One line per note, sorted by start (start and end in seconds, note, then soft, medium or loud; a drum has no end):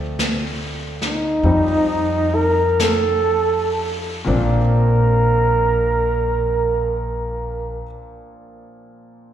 0.00 1.39 D2 medium
0.00 1.43 F3 medium
0.00 1.44 A3 soft
0.00 1.43 C4 soft
0.00 1.45 D5 medium
0.19 brush sweep soft
0.19 snare soft
0.19 hi-hat pedal soft
1.02 snare soft
1.06 2.37 D#4 medium
1.43 4.22 F2 medium
1.43 4.25 F3 soft
1.43 4.26 G3 soft
1.43 4.26 C4 soft
1.43 4.27 D#4 medium
1.43 brush sweep soft
2.35 2.83 A#4 medium
2.79 4.03 A4 medium
2.79 brush sweep soft
2.79 snare soft
2.79 hi-hat pedal soft
4.25 7.81 A#1 medium
4.25 7.82 A#2 medium
4.25 7.84 F3 medium
4.25 7.85 A#3 medium
4.25 7.85 C4 medium
4.25 7.86 D4 medium
4.29 7.83 A#4 medium